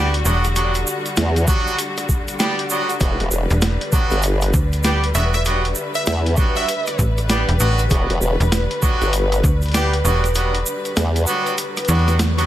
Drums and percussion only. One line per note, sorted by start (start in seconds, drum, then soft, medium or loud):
0.14 closed hi-hat medium
0.25 shaker loud
0.44 cross-stick medium
0.44 closed hi-hat soft
0.44 shaker soft
0.56 cross-stick soft
0.56 closed hi-hat medium
0.56 shaker medium
0.75 closed hi-hat medium
0.75 shaker soft
0.87 shaker loud
1.06 closed hi-hat soft
1.06 shaker soft
1.16 snare loud
1.16 closed hi-hat medium
1.16 shaker soft
1.36 closed hi-hat medium
1.36 shaker soft
1.47 kick loud
1.47 shaker loud
1.67 shaker soft
1.78 closed hi-hat medium
1.78 shaker medium
1.97 cross-stick medium
1.97 closed hi-hat medium
1.97 shaker soft
2.09 kick medium
2.09 shaker medium
2.28 cross-stick soft
2.28 closed hi-hat soft
2.28 shaker soft
2.34 cross-stick soft
2.39 cross-stick soft
2.39 snare loud
2.39 closed hi-hat medium
2.39 shaker medium
2.49 cross-stick soft
2.59 closed hi-hat medium
2.70 shaker medium
2.89 closed hi-hat soft
2.89 shaker soft
3.00 kick loud
3.00 cross-stick soft
3.00 closed hi-hat medium
3.00 shaker medium
3.20 closed hi-hat medium
3.31 shaker loud
3.50 closed hi-hat soft
3.50 shaker soft
3.61 snare loud
3.61 closed hi-hat medium
3.61 shaker soft
3.81 closed hi-hat soft
3.92 kick loud
3.92 shaker medium
4.11 closed hi-hat soft
4.11 shaker soft
4.22 closed hi-hat medium
4.22 shaker medium
4.41 cross-stick medium
4.41 closed hi-hat medium
4.41 shaker soft
4.54 kick loud
4.54 shaker medium
4.72 closed hi-hat soft
4.72 shaker soft
4.83 snare loud
4.83 closed hi-hat medium
4.83 shaker medium
5.04 closed hi-hat soft
5.15 shaker medium
5.34 cross-stick medium
5.34 closed hi-hat soft
5.34 shaker soft
5.45 cross-stick soft
5.45 closed hi-hat medium
5.45 shaker medium
5.65 closed hi-hat soft
5.75 shaker medium
5.94 closed hi-hat soft
5.94 shaker soft
6.06 snare loud
6.06 closed hi-hat medium
6.06 shaker soft
6.26 closed hi-hat medium
6.37 kick loud
6.37 shaker medium
6.56 closed hi-hat soft
6.56 shaker soft
6.68 closed hi-hat medium
6.68 shaker soft
6.87 cross-stick medium
6.87 closed hi-hat medium
6.87 shaker soft
6.99 kick medium
6.99 shaker medium
7.18 cross-stick soft
7.18 closed hi-hat soft
7.18 shaker soft
7.29 snare loud
7.29 closed hi-hat medium
7.29 shaker soft
7.49 closed hi-hat soft
7.60 shaker medium
7.78 closed hi-hat soft
7.78 shaker soft
7.90 kick loud
7.90 cross-stick soft
7.90 closed hi-hat medium
7.90 shaker soft
8.10 closed hi-hat medium
8.22 shaker medium
8.41 closed hi-hat soft
8.41 shaker soft
8.52 snare loud
8.52 closed hi-hat medium
8.52 shaker soft
8.71 closed hi-hat medium
8.82 kick loud
8.82 shaker medium
9.02 closed hi-hat soft
9.02 shaker soft
9.13 closed hi-hat medium
9.13 shaker soft
9.32 cross-stick medium
9.32 closed hi-hat medium
9.32 shaker soft
9.44 kick loud
9.44 shaker medium
9.62 closed hi-hat soft
9.62 shaker soft
9.66 closed hi-hat soft
9.68 closed hi-hat soft
9.72 snare loud
9.72 closed hi-hat soft
9.74 closed hi-hat medium
9.74 shaker medium
9.93 closed hi-hat medium
10.05 shaker medium
10.24 cross-stick medium
10.24 closed hi-hat soft
10.24 shaker soft
10.35 cross-stick soft
10.35 closed hi-hat medium
10.35 shaker soft
10.55 closed hi-hat medium
10.66 shaker loud
10.85 closed hi-hat soft
10.85 shaker soft
10.96 snare loud
10.96 closed hi-hat medium
10.96 shaker soft
11.16 closed hi-hat medium
11.16 shaker soft
11.27 shaker loud
11.46 closed hi-hat soft
11.46 shaker soft
11.58 closed hi-hat medium
11.58 shaker medium
11.77 cross-stick medium
11.77 closed hi-hat medium
11.77 closed hi-hat soft
11.77 shaker soft
11.85 closed hi-hat soft
11.85 shaker loud
11.89 closed hi-hat soft
11.95 closed hi-hat soft
11.99 closed hi-hat soft
12.08 cross-stick soft
12.08 snare soft
12.08 closed hi-hat soft
12.08 shaker soft
12.19 snare loud
12.19 closed hi-hat medium
12.19 shaker soft
12.38 closed hi-hat medium
12.38 shaker soft